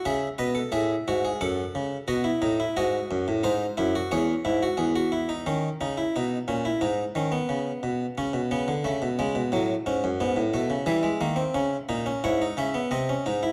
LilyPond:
<<
  \new Staff \with { instrumentName = "Harpsichord" } { \time 4/4 \key cis \minor \tempo 4 = 89 << { e''8 dis''8 e''4 fis''4 dis''4 | dis''4 bis'4 cis''2 | r1 | r1 |
e''2 cis''8 e''8 dis''4 | } \\ { gis'8 b'16 a'16 gis'8 fis'16 gis'16 a'4 fis'16 e'16 dis'16 e'16 | fis'4 dis'8 e'16 fis'16 gis'8 e'16 fis'16 gis'16 fis'16 e'16 dis'16 | cis'8 dis'16 e'16 dis'8 cis'16 e'16 dis'8 cis'16 b4~ b16 | cis'8 b8 a8 gis8 fis8 cis'8 b8 a8 |
g16 gis16 bes16 bis16 des'8 dis'16 des'16 e'16 dis'16 cis'16 b16 bis16 cis'16 dis'16 e'16 | } >> }
  \new Staff \with { instrumentName = "Harpsichord" } { \clef bass \time 4/4 \key cis \minor cis8 b,8 a,8 gis,8 fis,8 cis8 b,8 a,8 | gis,8 fis,16 a,16 gis,8 fis,8 e,8 gis,8 e,4 | dis8 cis8 b,8 ais,8 gis,8 dis8 cis8 b,8 | cis16 b,16 cis16 d16 cis16 b,16 cis16 b,16 a,8 gis,16 fis,16 gis,16 a,16 b,16 cis16 |
e8 dis8 des8 bes,8 gis,8 cis8 bis,8 gis,8 | }
>>